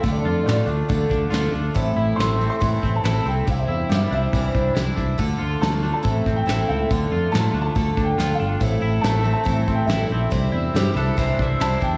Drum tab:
HH |o-o-o-o-|o-o-o-o-|o-o-o-o-|o-o-o-o-|
SD |--o---o-|--o---o-|--o---o-|--o---o-|
BD |o---oo--|o---oo--|o---oo-o|o---oo--|

HH |o-o-o-o-|o-o-o-o-|o-o-o-o-|
SD |--o---o-|--o---o-|--o---o-|
BD |o---oo--|o---oo--|o---oo-o|